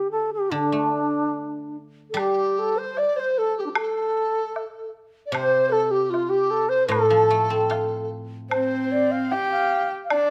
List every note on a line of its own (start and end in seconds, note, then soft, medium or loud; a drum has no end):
0.00 0.50 D3 medium
0.00 0.11 G4 medium
0.11 0.31 A4 medium
0.33 0.54 G4 medium
0.51 2.96 D3 medium
0.51 1.77 D4 medium
0.72 2.37 A3 soft
2.10 4.53 G3 medium
2.10 2.20 A4 medium
2.17 2.77 G4 medium
2.17 2.60 G4 medium
2.17 high woodblock medium
2.59 2.80 A4 medium
2.75 2.99 C5 medium
2.75 3.00 C5 medium
2.97 3.18 D5 medium
2.97 3.21 D5 loud
2.97 low woodblock soft
3.16 3.39 C5 medium
3.16 3.30 C5 medium
3.30 3.40 C5 medium
3.38 3.57 A4 medium
3.38 3.62 A4 medium
3.57 3.77 G4 medium
3.57 3.65 G4 medium
3.66 3.69 D4 soft
3.70 3.73 F4 soft
3.70 3.79 G4 soft
3.75 4.94 A4 medium
3.75 high woodblock medium
3.79 4.92 A4 medium
4.56 low woodblock soft
5.26 5.33 D5 medium
5.32 6.90 C3 medium
5.32 5.71 C5 medium
5.32 5.74 C5 loud
5.32 high woodblock medium
5.69 5.86 A4 medium
5.69 5.92 A4 medium
5.86 5.92 A4 medium
5.91 6.11 G4 medium
6.10 6.33 F4 medium
6.10 6.31 F4 medium
6.10 low woodblock soft
6.29 6.52 G4 medium
6.29 6.68 G4 medium
6.50 6.70 A4 medium
6.69 6.87 C5 loud
6.69 6.91 C5 medium
6.88 9.30 A2 medium
6.88 8.05 A4 loud
6.88 8.10 A4 medium
6.88 high woodblock medium
7.10 8.71 F3 soft
7.30 8.92 A3 soft
7.50 9.11 C4 soft
7.70 9.31 F4 soft
7.70 high woodblock soft
7.70 low woodblock soft
8.50 9.33 C4 medium
8.50 8.93 C5 medium
8.50 8.88 C5 medium
8.50 high woodblock medium
8.92 9.13 D5 medium
9.11 9.33 F5 medium
9.31 9.91 G4 medium
9.31 9.51 G5 medium
9.31 9.91 G5 medium
9.31 low woodblock soft
9.51 9.88 F5 medium
10.04 10.12 F5 medium
10.10 10.30 D4 medium
10.10 10.30 D5 medium
10.10 high woodblock medium